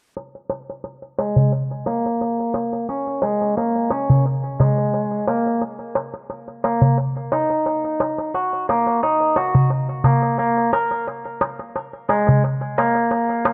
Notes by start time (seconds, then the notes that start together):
0.17 darbuka tek
0.35 darbuka tek
0.50 darbuka tek
0.70 darbuka tek
0.84 darbuka tek
1.02 darbuka tek
1.19 G#3, darbuka tek
1.36 darbuka tek, darbuka dum
1.52 darbuka tek
1.71 darbuka tek
1.86 A#3, darbuka tek
2.06 darbuka tek
2.21 darbuka tek
2.40 darbuka tek
2.54 darbuka tek
2.73 darbuka tek
2.89 C#4, darbuka tek
3.07 darbuka tek
3.22 G#3, darbuka tek
3.42 darbuka tek
3.57 A#3, darbuka tek
3.76 darbuka tek
3.90 C#4, darbuka tek
4.10 darbuka tek, darbuka dum
4.26 darbuka tek
4.44 darbuka tek
4.60 G#3, darbuka tek, darbuka dum
4.78 darbuka tek
4.94 darbuka tek
5.11 darbuka tek
5.27 A#3, darbuka tek
5.47 darbuka tek
5.62 darbuka tek
5.79 darbuka tek
5.95 darbuka tek
6.14 darbuka tek
6.30 darbuka tek
6.48 darbuka tek
6.64 A#3, darbuka tek
6.82 darbuka tek, darbuka dum
6.98 darbuka tek
7.17 darbuka tek
7.32 D#4, darbuka tek
7.50 darbuka tek
7.66 darbuka tek
7.84 darbuka tek
8.00 darbuka tek
8.18 darbuka tek
8.34 F#4, darbuka tek
8.53 darbuka tek
8.69 A#3, darbuka tek
8.87 darbuka tek
9.03 D#4, darbuka tek
9.20 darbuka tek
9.36 F#4, darbuka tek
9.55 darbuka tek, darbuka dum
9.70 darbuka tek
9.89 darbuka tek
10.04 A#3, darbuka tek, darbuka dum
10.22 darbuka tek
10.38 A#3, darbuka tek
10.57 darbuka tek
10.73 A#4, darbuka tek
10.91 darbuka tek
11.07 darbuka tek
11.25 darbuka tek
11.41 darbuka tek
11.59 darbuka tek
11.76 darbuka tek
11.93 darbuka tek
12.09 G#3, darbuka tek
12.27 darbuka tek, darbuka dum
12.44 darbuka tek
12.61 darbuka tek
12.78 A#3, darbuka tek
12.95 darbuka tek
13.11 darbuka tek
13.29 darbuka tek
13.45 darbuka tek